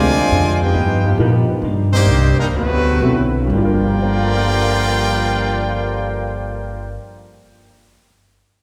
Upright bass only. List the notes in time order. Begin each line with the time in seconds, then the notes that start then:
Already playing: D2
0.31 F2
0.74 G2
1.18 A#2
1.48 muted upright bass stroke
1.62 G2
2.07 C2
2.38 muted upright bass stroke
2.53 D2
3.00 B1
3.50 G1